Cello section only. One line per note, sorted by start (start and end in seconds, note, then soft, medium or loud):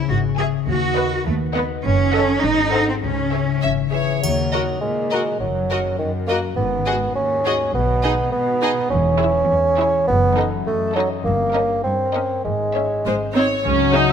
0.09 0.17 F#4 medium
0.38 0.46 G#4 medium
0.68 1.25 F#4 medium
1.26 1.34 A3 medium
1.56 1.64 B3 medium
1.85 2.43 C#4 medium
2.43 2.88 D#4 medium
2.89 2.95 C4 medium
3.04 3.62 C#4 medium
4.23 4.72 D#2 soft
4.82 5.31 A#2 soft
5.41 5.90 F#2 soft
5.99 6.48 F#2 medium
6.57 7.06 G#2 medium
7.16 7.65 D#2 medium
7.75 8.23 B2 medium
8.33 8.81 B2 medium
8.91 9.37 E2 medium
9.50 9.96 E2 medium
10.08 10.55 F#2 medium
10.67 11.13 F#2 medium
11.26 11.72 G2 medium
11.85 12.32 G2 medium
12.45 12.92 G#2 medium
13.05 13.52 G#2 soft
13.65 14.11 C#3 medium